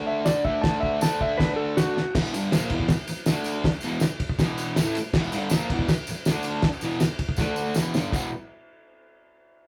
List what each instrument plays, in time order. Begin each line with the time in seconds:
Already playing: distorted electric guitar D3 A3 D4
0.07 electric slide guitar E5
0.25 electric slide guitar D5, snare, tambourine, crash
0.45 distorted electric guitar D3 A3 D4, electric slide guitar E5, kick
0.62 electric slide guitar A5, kick, snare, crash
0.80 electric slide guitar E5, kick
1.01 distorted electric guitar D3 A3, electric slide guitar A5, snare, tambourine, crash
1.06 distorted electric guitar D4
1.21 electric slide guitar E5, kick
1.38 electric slide guitar B4, kick, snare, crash
1.56 electric slide guitar A4
1.77 electric slide guitar F#4, snare, tambourine, crash
1.97 snare
2.15 distorted electric guitar E2 B2 E3, kick, snare, crash
2.25 tambourine
2.33 distorted electric guitar G2 D3 G3, ride, tambourine
2.52 distorted electric guitar A#2 F3 A#3, snare, ride, tambourine
2.62 tambourine
2.70 distorted electric guitar E2 B2 E3, kick, ride
2.80 kick
2.88 muted distorted electric guitar stroke, kick, snare, ride, tambourine
2.99 tambourine
3.07 muted distorted electric guitar stroke, ride, tambourine
3.26 distorted electric guitar D3 A3 D4, snare, ride, tambourine
3.44 ride, tambourine
3.53 tambourine
3.64 muted distorted electric guitar stroke, kick, snare, ride
3.72 tambourine
3.81 distorted electric guitar E2 B2, ride, tambourine
3.85 distorted electric guitar E3
4.00 snare, ride, tambourine
4.09 tambourine
4.20 kick, ride
4.29 kick
4.39 distorted electric guitar E2 B2 E3, kick, snare, ride, tambourine
4.50 tambourine
4.57 ride, tambourine
4.76 distorted electric guitar A2 E3 A3, snare, ride, tambourine
4.95 muted distorted electric guitar stroke, ride, tambourine
5.14 distorted electric guitar E2 B2 E3, kick, snare, crash
5.24 tambourine
5.32 distorted electric guitar G2 D3 G3, ride, tambourine
5.50 distorted electric guitar A#2 F3 A#3, snare, ride, tambourine
5.61 tambourine
5.70 distorted electric guitar E2 B2 E3, kick, ride
5.79 kick
5.88 muted distorted electric guitar stroke, kick, snare, ride, tambourine
5.98 tambourine
6.07 muted distorted electric guitar stroke, ride, tambourine
6.25 distorted electric guitar D3 A3 D4, snare, ride, tambourine
6.43 ride, tambourine
6.62 muted distorted electric guitar stroke, kick, snare, ride
6.73 tambourine
6.81 distorted electric guitar E2 B2 E3, ride, tambourine
6.91 tambourine
7.00 snare, ride, tambourine
7.19 kick, ride
7.29 kick
7.36 distorted electric guitar D3 A3 D4, kick, snare, tambourine
7.56 tambourine
7.74 distorted electric guitar E2 B2 E3, snare, tambourine
7.85 tambourine
7.94 distorted electric guitar G2 D3 G3, snare, tambourine
8.04 tambourine
8.12 distorted electric guitar E2 B2 E3, kick, crash, tambourine